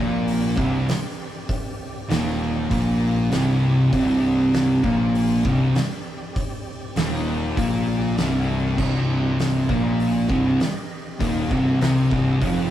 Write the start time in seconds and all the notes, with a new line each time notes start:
Already playing: A#1 A#2 A#3 C4 G4 D5
0.28 open hi-hat
0.56 C1 C2 C3, kick
0.89 snare, open hi-hat
1.49 kick, open hi-hat
2.10 D#1 D#2 D#3, snare, open hi-hat
2.70 A#1 A#2 A#3, kick, open hi-hat
3.31 C1 C2 C3, snare, open hi-hat
3.92 C1 C2 C3, kick, open hi-hat
4.54 snare, open hi-hat
4.83 A#1 A#2 A#3, kick
5.15 open hi-hat
5.44 C1 C2 C3, kick
5.75 snare, open hi-hat
6.36 kick, open hi-hat
6.96 D#1 D#2 D#3, snare, open hi-hat
7.57 A#1 A#2 A#3, kick, open hi-hat
8.18 C1 C2 C3, snare, open hi-hat
8.77 C1 C2 C3 D#5, kick, crash
9.39 snare, open hi-hat
9.69 A#1 A#2 A#3, kick
10.00 open hi-hat
10.29 C1 C2 C3, kick
10.60 snare, open hi-hat
11.19 D#1 D#2 D#3, kick, open hi-hat
11.51 C1 C2 C3, kick
11.80 C2 C3 C4, snare, open hi-hat
12.11 C1 C2 C3, kick
12.42 F1 F2 F3, kick, open hi-hat